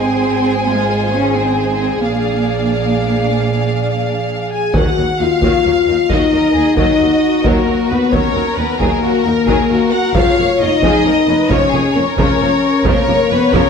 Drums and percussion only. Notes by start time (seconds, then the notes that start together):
4.74 taiko
5.42 taiko
6.10 taiko
6.77 taiko
7.44 taiko
8.12 taiko
8.80 taiko
9.48 taiko
10.15 taiko
10.83 taiko
11.51 taiko
12.18 taiko
12.85 taiko
13.53 taiko